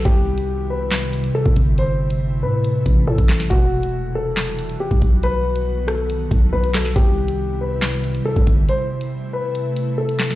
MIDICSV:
0, 0, Header, 1, 5, 480
1, 0, Start_track
1, 0, Tempo, 431655
1, 59, Time_signature, 4, 2, 24, 8
1, 11510, End_track
2, 0, Start_track
2, 0, Title_t, "Grand piano"
2, 0, Program_c, 0, 0
2, 56, Note_on_c, 0, 67, 105
2, 734, Note_off_c, 0, 67, 0
2, 782, Note_on_c, 0, 71, 82
2, 1457, Note_off_c, 0, 71, 0
2, 1499, Note_on_c, 0, 69, 97
2, 1680, Note_off_c, 0, 69, 0
2, 1986, Note_on_c, 0, 72, 109
2, 2660, Note_off_c, 0, 72, 0
2, 2700, Note_on_c, 0, 71, 81
2, 3377, Note_off_c, 0, 71, 0
2, 3418, Note_on_c, 0, 69, 86
2, 3869, Note_off_c, 0, 69, 0
2, 3893, Note_on_c, 0, 66, 114
2, 4573, Note_off_c, 0, 66, 0
2, 4618, Note_on_c, 0, 69, 95
2, 5296, Note_off_c, 0, 69, 0
2, 5340, Note_on_c, 0, 67, 85
2, 5521, Note_off_c, 0, 67, 0
2, 5822, Note_on_c, 0, 71, 109
2, 6497, Note_off_c, 0, 71, 0
2, 6534, Note_on_c, 0, 69, 78
2, 7213, Note_off_c, 0, 69, 0
2, 7257, Note_on_c, 0, 71, 94
2, 7439, Note_off_c, 0, 71, 0
2, 7502, Note_on_c, 0, 69, 86
2, 7682, Note_off_c, 0, 69, 0
2, 7737, Note_on_c, 0, 67, 107
2, 8414, Note_off_c, 0, 67, 0
2, 8462, Note_on_c, 0, 71, 78
2, 9138, Note_off_c, 0, 71, 0
2, 9179, Note_on_c, 0, 69, 101
2, 9360, Note_off_c, 0, 69, 0
2, 9665, Note_on_c, 0, 72, 110
2, 10339, Note_off_c, 0, 72, 0
2, 10378, Note_on_c, 0, 71, 82
2, 11055, Note_off_c, 0, 71, 0
2, 11096, Note_on_c, 0, 69, 86
2, 11510, Note_off_c, 0, 69, 0
2, 11510, End_track
3, 0, Start_track
3, 0, Title_t, "Ambient pad"
3, 0, Program_c, 1, 92
3, 58, Note_on_c, 1, 55, 78
3, 59, Note_on_c, 1, 48, 82
3, 60, Note_on_c, 1, 64, 92
3, 1959, Note_off_c, 1, 55, 0
3, 1960, Note_off_c, 1, 64, 0
3, 1980, Note_on_c, 1, 57, 77
3, 1980, Note_on_c, 1, 64, 92
3, 3861, Note_off_c, 1, 48, 0
3, 3880, Note_off_c, 1, 57, 0
3, 3880, Note_off_c, 1, 64, 0
3, 3900, Note_on_c, 1, 55, 78
3, 3901, Note_on_c, 1, 52, 80
3, 3901, Note_on_c, 1, 66, 96
3, 5800, Note_off_c, 1, 55, 0
3, 5801, Note_off_c, 1, 52, 0
3, 5819, Note_on_c, 1, 51, 85
3, 5819, Note_on_c, 1, 59, 77
3, 7701, Note_off_c, 1, 66, 0
3, 7720, Note_off_c, 1, 51, 0
3, 7720, Note_off_c, 1, 59, 0
3, 7739, Note_on_c, 1, 64, 95
3, 7740, Note_on_c, 1, 48, 86
3, 7740, Note_on_c, 1, 55, 78
3, 9640, Note_off_c, 1, 48, 0
3, 9640, Note_off_c, 1, 55, 0
3, 9640, Note_off_c, 1, 64, 0
3, 9660, Note_on_c, 1, 48, 83
3, 9660, Note_on_c, 1, 57, 79
3, 9661, Note_on_c, 1, 64, 94
3, 11510, Note_off_c, 1, 48, 0
3, 11510, Note_off_c, 1, 57, 0
3, 11510, Note_off_c, 1, 64, 0
3, 11510, End_track
4, 0, Start_track
4, 0, Title_t, "808-style bass"
4, 0, Program_c, 2, 38
4, 59, Note_on_c, 2, 36, 112
4, 1454, Note_off_c, 2, 36, 0
4, 1619, Note_on_c, 2, 36, 104
4, 1734, Note_off_c, 2, 36, 0
4, 1740, Note_on_c, 2, 31, 111
4, 2699, Note_on_c, 2, 45, 104
4, 2716, Note_off_c, 2, 31, 0
4, 3155, Note_off_c, 2, 45, 0
4, 3179, Note_on_c, 2, 33, 106
4, 3409, Note_off_c, 2, 33, 0
4, 3420, Note_on_c, 2, 45, 108
4, 3535, Note_off_c, 2, 45, 0
4, 3540, Note_on_c, 2, 33, 107
4, 3885, Note_off_c, 2, 33, 0
4, 3900, Note_on_c, 2, 28, 112
4, 5295, Note_off_c, 2, 28, 0
4, 5460, Note_on_c, 2, 35, 102
4, 5575, Note_off_c, 2, 35, 0
4, 5580, Note_on_c, 2, 35, 106
4, 6975, Note_off_c, 2, 35, 0
4, 7018, Note_on_c, 2, 35, 106
4, 7249, Note_off_c, 2, 35, 0
4, 7260, Note_on_c, 2, 35, 108
4, 7720, Note_off_c, 2, 35, 0
4, 7739, Note_on_c, 2, 36, 111
4, 9135, Note_off_c, 2, 36, 0
4, 9299, Note_on_c, 2, 36, 104
4, 9414, Note_off_c, 2, 36, 0
4, 9419, Note_on_c, 2, 31, 109
4, 9659, Note_off_c, 2, 31, 0
4, 11510, End_track
5, 0, Start_track
5, 0, Title_t, "Drums"
5, 58, Note_on_c, 9, 42, 73
5, 59, Note_on_c, 9, 36, 117
5, 169, Note_off_c, 9, 42, 0
5, 170, Note_off_c, 9, 36, 0
5, 419, Note_on_c, 9, 42, 77
5, 530, Note_off_c, 9, 42, 0
5, 1016, Note_on_c, 9, 38, 127
5, 1017, Note_on_c, 9, 42, 86
5, 1024, Note_on_c, 9, 39, 107
5, 1128, Note_off_c, 9, 38, 0
5, 1129, Note_off_c, 9, 42, 0
5, 1135, Note_off_c, 9, 39, 0
5, 1257, Note_on_c, 9, 42, 92
5, 1369, Note_off_c, 9, 42, 0
5, 1377, Note_on_c, 9, 42, 68
5, 1488, Note_off_c, 9, 42, 0
5, 1619, Note_on_c, 9, 36, 97
5, 1730, Note_off_c, 9, 36, 0
5, 1738, Note_on_c, 9, 42, 78
5, 1739, Note_on_c, 9, 36, 97
5, 1849, Note_off_c, 9, 42, 0
5, 1850, Note_off_c, 9, 36, 0
5, 1979, Note_on_c, 9, 42, 73
5, 2090, Note_off_c, 9, 42, 0
5, 2339, Note_on_c, 9, 42, 79
5, 2451, Note_off_c, 9, 42, 0
5, 2939, Note_on_c, 9, 42, 85
5, 3051, Note_off_c, 9, 42, 0
5, 3178, Note_on_c, 9, 36, 94
5, 3180, Note_on_c, 9, 42, 90
5, 3290, Note_off_c, 9, 36, 0
5, 3291, Note_off_c, 9, 42, 0
5, 3540, Note_on_c, 9, 36, 97
5, 3540, Note_on_c, 9, 42, 68
5, 3651, Note_off_c, 9, 36, 0
5, 3651, Note_off_c, 9, 42, 0
5, 3660, Note_on_c, 9, 38, 123
5, 3668, Note_on_c, 9, 39, 100
5, 3771, Note_off_c, 9, 38, 0
5, 3779, Note_off_c, 9, 39, 0
5, 3780, Note_on_c, 9, 42, 70
5, 3781, Note_on_c, 9, 38, 66
5, 3891, Note_off_c, 9, 42, 0
5, 3892, Note_off_c, 9, 38, 0
5, 3900, Note_on_c, 9, 36, 122
5, 3900, Note_on_c, 9, 42, 72
5, 4011, Note_off_c, 9, 36, 0
5, 4011, Note_off_c, 9, 42, 0
5, 4261, Note_on_c, 9, 42, 78
5, 4372, Note_off_c, 9, 42, 0
5, 4858, Note_on_c, 9, 38, 127
5, 4859, Note_on_c, 9, 42, 86
5, 4866, Note_on_c, 9, 39, 108
5, 4970, Note_off_c, 9, 38, 0
5, 4971, Note_off_c, 9, 42, 0
5, 4977, Note_off_c, 9, 39, 0
5, 5100, Note_on_c, 9, 42, 95
5, 5211, Note_off_c, 9, 42, 0
5, 5220, Note_on_c, 9, 42, 68
5, 5331, Note_off_c, 9, 42, 0
5, 5460, Note_on_c, 9, 36, 99
5, 5571, Note_off_c, 9, 36, 0
5, 5579, Note_on_c, 9, 42, 77
5, 5580, Note_on_c, 9, 36, 97
5, 5690, Note_off_c, 9, 42, 0
5, 5691, Note_off_c, 9, 36, 0
5, 5818, Note_on_c, 9, 42, 71
5, 5930, Note_off_c, 9, 42, 0
5, 6179, Note_on_c, 9, 42, 78
5, 6290, Note_off_c, 9, 42, 0
5, 6539, Note_on_c, 9, 37, 104
5, 6651, Note_off_c, 9, 37, 0
5, 6780, Note_on_c, 9, 42, 84
5, 6892, Note_off_c, 9, 42, 0
5, 7018, Note_on_c, 9, 36, 99
5, 7020, Note_on_c, 9, 42, 95
5, 7129, Note_off_c, 9, 36, 0
5, 7131, Note_off_c, 9, 42, 0
5, 7380, Note_on_c, 9, 42, 68
5, 7491, Note_off_c, 9, 42, 0
5, 7498, Note_on_c, 9, 38, 124
5, 7506, Note_on_c, 9, 39, 99
5, 7610, Note_off_c, 9, 38, 0
5, 7617, Note_off_c, 9, 39, 0
5, 7619, Note_on_c, 9, 38, 64
5, 7619, Note_on_c, 9, 42, 74
5, 7730, Note_off_c, 9, 42, 0
5, 7731, Note_off_c, 9, 38, 0
5, 7739, Note_on_c, 9, 36, 121
5, 7740, Note_on_c, 9, 42, 72
5, 7850, Note_off_c, 9, 36, 0
5, 7851, Note_off_c, 9, 42, 0
5, 8099, Note_on_c, 9, 42, 80
5, 8210, Note_off_c, 9, 42, 0
5, 8698, Note_on_c, 9, 38, 127
5, 8699, Note_on_c, 9, 42, 86
5, 8705, Note_on_c, 9, 39, 109
5, 8809, Note_off_c, 9, 38, 0
5, 8810, Note_off_c, 9, 42, 0
5, 8816, Note_off_c, 9, 39, 0
5, 8938, Note_on_c, 9, 42, 94
5, 9049, Note_off_c, 9, 42, 0
5, 9059, Note_on_c, 9, 42, 70
5, 9170, Note_off_c, 9, 42, 0
5, 9299, Note_on_c, 9, 36, 96
5, 9411, Note_off_c, 9, 36, 0
5, 9419, Note_on_c, 9, 36, 97
5, 9419, Note_on_c, 9, 42, 80
5, 9530, Note_off_c, 9, 42, 0
5, 9531, Note_off_c, 9, 36, 0
5, 9659, Note_on_c, 9, 42, 71
5, 9770, Note_off_c, 9, 42, 0
5, 10019, Note_on_c, 9, 42, 79
5, 10131, Note_off_c, 9, 42, 0
5, 10619, Note_on_c, 9, 42, 88
5, 10730, Note_off_c, 9, 42, 0
5, 10858, Note_on_c, 9, 42, 93
5, 10970, Note_off_c, 9, 42, 0
5, 11219, Note_on_c, 9, 42, 70
5, 11330, Note_off_c, 9, 42, 0
5, 11337, Note_on_c, 9, 38, 123
5, 11345, Note_on_c, 9, 39, 97
5, 11448, Note_off_c, 9, 38, 0
5, 11456, Note_off_c, 9, 39, 0
5, 11459, Note_on_c, 9, 42, 76
5, 11460, Note_on_c, 9, 38, 65
5, 11510, Note_off_c, 9, 38, 0
5, 11510, Note_off_c, 9, 42, 0
5, 11510, End_track
0, 0, End_of_file